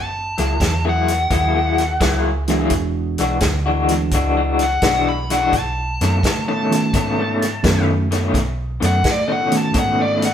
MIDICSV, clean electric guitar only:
0, 0, Header, 1, 2, 480
1, 0, Start_track
1, 0, Tempo, 703400
1, 1855, Time_signature, 4, 2, 24, 8
1, 7055, End_track
2, 0, Start_track
2, 0, Title_t, "Clean electric guitar"
2, 0, Program_c, 0, 27
2, 258, Note_on_c, 0, 54, 74
2, 262, Note_on_c, 0, 58, 83
2, 264, Note_on_c, 0, 64, 81
2, 266, Note_on_c, 0, 68, 91
2, 359, Note_off_c, 0, 54, 0
2, 361, Note_off_c, 0, 58, 0
2, 362, Note_off_c, 0, 64, 0
2, 363, Note_off_c, 0, 68, 0
2, 579, Note_on_c, 0, 68, 84
2, 581, Note_on_c, 0, 64, 87
2, 586, Note_on_c, 0, 58, 79
2, 590, Note_on_c, 0, 54, 80
2, 764, Note_off_c, 0, 68, 0
2, 765, Note_off_c, 0, 64, 0
2, 767, Note_off_c, 0, 58, 0
2, 770, Note_off_c, 0, 54, 0
2, 891, Note_on_c, 0, 54, 67
2, 893, Note_on_c, 0, 58, 87
2, 893, Note_on_c, 0, 64, 78
2, 898, Note_on_c, 0, 68, 83
2, 1047, Note_off_c, 0, 68, 0
2, 1048, Note_off_c, 0, 64, 0
2, 1054, Note_off_c, 0, 58, 0
2, 1055, Note_on_c, 0, 68, 78
2, 1056, Note_off_c, 0, 54, 0
2, 1056, Note_on_c, 0, 64, 76
2, 1062, Note_on_c, 0, 58, 68
2, 1065, Note_on_c, 0, 54, 60
2, 1242, Note_off_c, 0, 68, 0
2, 1243, Note_off_c, 0, 64, 0
2, 1246, Note_off_c, 0, 58, 0
2, 1247, Note_off_c, 0, 54, 0
2, 1367, Note_on_c, 0, 54, 95
2, 1371, Note_on_c, 0, 58, 95
2, 1375, Note_on_c, 0, 64, 89
2, 1379, Note_on_c, 0, 68, 104
2, 1583, Note_off_c, 0, 54, 0
2, 1585, Note_off_c, 0, 58, 0
2, 1586, Note_off_c, 0, 64, 0
2, 1588, Note_off_c, 0, 68, 0
2, 1699, Note_on_c, 0, 54, 73
2, 1703, Note_on_c, 0, 58, 81
2, 1704, Note_on_c, 0, 64, 86
2, 1704, Note_on_c, 0, 68, 88
2, 1763, Note_off_c, 0, 68, 0
2, 1770, Note_off_c, 0, 54, 0
2, 1770, Note_off_c, 0, 58, 0
2, 1770, Note_off_c, 0, 64, 0
2, 1772, Note_on_c, 0, 68, 92
2, 1778, Note_on_c, 0, 54, 77
2, 1778, Note_on_c, 0, 58, 87
2, 1778, Note_on_c, 0, 64, 84
2, 1852, Note_off_c, 0, 68, 0
2, 1855, Note_off_c, 0, 54, 0
2, 1855, Note_off_c, 0, 58, 0
2, 1855, Note_off_c, 0, 64, 0
2, 2176, Note_on_c, 0, 52, 86
2, 2178, Note_on_c, 0, 56, 80
2, 2184, Note_on_c, 0, 62, 87
2, 2184, Note_on_c, 0, 66, 84
2, 2279, Note_off_c, 0, 52, 0
2, 2279, Note_off_c, 0, 56, 0
2, 2282, Note_off_c, 0, 62, 0
2, 2283, Note_off_c, 0, 66, 0
2, 2496, Note_on_c, 0, 66, 80
2, 2502, Note_on_c, 0, 62, 78
2, 2507, Note_on_c, 0, 56, 84
2, 2508, Note_on_c, 0, 52, 77
2, 2683, Note_off_c, 0, 66, 0
2, 2686, Note_off_c, 0, 62, 0
2, 2689, Note_off_c, 0, 52, 0
2, 2689, Note_off_c, 0, 56, 0
2, 2823, Note_on_c, 0, 52, 74
2, 2827, Note_on_c, 0, 56, 78
2, 2828, Note_on_c, 0, 66, 74
2, 2829, Note_on_c, 0, 62, 86
2, 2972, Note_off_c, 0, 66, 0
2, 2975, Note_off_c, 0, 62, 0
2, 2979, Note_off_c, 0, 56, 0
2, 2980, Note_on_c, 0, 66, 79
2, 2982, Note_off_c, 0, 52, 0
2, 2983, Note_on_c, 0, 62, 72
2, 2987, Note_on_c, 0, 56, 80
2, 2994, Note_on_c, 0, 52, 60
2, 3165, Note_off_c, 0, 66, 0
2, 3167, Note_off_c, 0, 62, 0
2, 3169, Note_off_c, 0, 56, 0
2, 3172, Note_off_c, 0, 52, 0
2, 3293, Note_on_c, 0, 52, 81
2, 3300, Note_on_c, 0, 56, 90
2, 3302, Note_on_c, 0, 62, 102
2, 3306, Note_on_c, 0, 66, 98
2, 3506, Note_off_c, 0, 52, 0
2, 3509, Note_off_c, 0, 56, 0
2, 3511, Note_off_c, 0, 62, 0
2, 3513, Note_off_c, 0, 66, 0
2, 3619, Note_on_c, 0, 52, 72
2, 3619, Note_on_c, 0, 56, 77
2, 3624, Note_on_c, 0, 66, 90
2, 3627, Note_on_c, 0, 62, 92
2, 3685, Note_off_c, 0, 66, 0
2, 3687, Note_off_c, 0, 62, 0
2, 3691, Note_off_c, 0, 56, 0
2, 3693, Note_on_c, 0, 66, 101
2, 3695, Note_on_c, 0, 62, 96
2, 3697, Note_off_c, 0, 52, 0
2, 3699, Note_on_c, 0, 56, 90
2, 3706, Note_on_c, 0, 52, 82
2, 3773, Note_off_c, 0, 66, 0
2, 3774, Note_off_c, 0, 62, 0
2, 3776, Note_off_c, 0, 56, 0
2, 3779, Note_off_c, 0, 52, 0
2, 4104, Note_on_c, 0, 47, 83
2, 4106, Note_on_c, 0, 51, 88
2, 4108, Note_on_c, 0, 57, 83
2, 4114, Note_on_c, 0, 61, 92
2, 4203, Note_off_c, 0, 47, 0
2, 4204, Note_off_c, 0, 51, 0
2, 4205, Note_off_c, 0, 57, 0
2, 4208, Note_off_c, 0, 61, 0
2, 4423, Note_on_c, 0, 61, 83
2, 4426, Note_on_c, 0, 57, 84
2, 4428, Note_on_c, 0, 51, 86
2, 4429, Note_on_c, 0, 47, 75
2, 4607, Note_off_c, 0, 61, 0
2, 4608, Note_off_c, 0, 57, 0
2, 4609, Note_off_c, 0, 51, 0
2, 4610, Note_off_c, 0, 47, 0
2, 4739, Note_on_c, 0, 47, 78
2, 4742, Note_on_c, 0, 51, 84
2, 4743, Note_on_c, 0, 57, 90
2, 4749, Note_on_c, 0, 61, 95
2, 4897, Note_off_c, 0, 61, 0
2, 4900, Note_off_c, 0, 47, 0
2, 4900, Note_off_c, 0, 57, 0
2, 4902, Note_off_c, 0, 51, 0
2, 4905, Note_on_c, 0, 61, 72
2, 4908, Note_on_c, 0, 57, 84
2, 4909, Note_on_c, 0, 51, 73
2, 4914, Note_on_c, 0, 47, 66
2, 5088, Note_off_c, 0, 61, 0
2, 5089, Note_off_c, 0, 57, 0
2, 5090, Note_off_c, 0, 51, 0
2, 5092, Note_off_c, 0, 47, 0
2, 5212, Note_on_c, 0, 47, 81
2, 5215, Note_on_c, 0, 51, 89
2, 5217, Note_on_c, 0, 57, 91
2, 5223, Note_on_c, 0, 61, 100
2, 5426, Note_off_c, 0, 47, 0
2, 5427, Note_off_c, 0, 51, 0
2, 5428, Note_off_c, 0, 57, 0
2, 5431, Note_off_c, 0, 61, 0
2, 5535, Note_on_c, 0, 47, 84
2, 5540, Note_on_c, 0, 51, 77
2, 5541, Note_on_c, 0, 57, 82
2, 5545, Note_on_c, 0, 61, 81
2, 5602, Note_off_c, 0, 61, 0
2, 5604, Note_off_c, 0, 57, 0
2, 5606, Note_off_c, 0, 51, 0
2, 5610, Note_on_c, 0, 61, 96
2, 5612, Note_on_c, 0, 57, 85
2, 5613, Note_off_c, 0, 47, 0
2, 5614, Note_on_c, 0, 51, 92
2, 5621, Note_on_c, 0, 47, 87
2, 5741, Note_off_c, 0, 61, 0
2, 5742, Note_off_c, 0, 57, 0
2, 5743, Note_off_c, 0, 51, 0
2, 5746, Note_off_c, 0, 47, 0
2, 6008, Note_on_c, 0, 47, 75
2, 6011, Note_on_c, 0, 51, 86
2, 6016, Note_on_c, 0, 57, 95
2, 6017, Note_on_c, 0, 61, 87
2, 6115, Note_off_c, 0, 47, 0
2, 6117, Note_off_c, 0, 51, 0
2, 6119, Note_off_c, 0, 57, 0
2, 6120, Note_off_c, 0, 61, 0
2, 6331, Note_on_c, 0, 57, 83
2, 6332, Note_on_c, 0, 61, 94
2, 6336, Note_on_c, 0, 51, 78
2, 6339, Note_on_c, 0, 47, 86
2, 6521, Note_off_c, 0, 57, 0
2, 6522, Note_off_c, 0, 61, 0
2, 6524, Note_off_c, 0, 51, 0
2, 6525, Note_off_c, 0, 47, 0
2, 6644, Note_on_c, 0, 47, 94
2, 6648, Note_on_c, 0, 51, 81
2, 6652, Note_on_c, 0, 57, 78
2, 6652, Note_on_c, 0, 61, 92
2, 6806, Note_off_c, 0, 61, 0
2, 6810, Note_off_c, 0, 57, 0
2, 6814, Note_off_c, 0, 47, 0
2, 6814, Note_on_c, 0, 61, 77
2, 6816, Note_off_c, 0, 51, 0
2, 6818, Note_on_c, 0, 57, 73
2, 6823, Note_on_c, 0, 47, 73
2, 6824, Note_on_c, 0, 51, 71
2, 7003, Note_off_c, 0, 61, 0
2, 7006, Note_off_c, 0, 57, 0
2, 7008, Note_off_c, 0, 47, 0
2, 7008, Note_off_c, 0, 51, 0
2, 7055, End_track
0, 0, End_of_file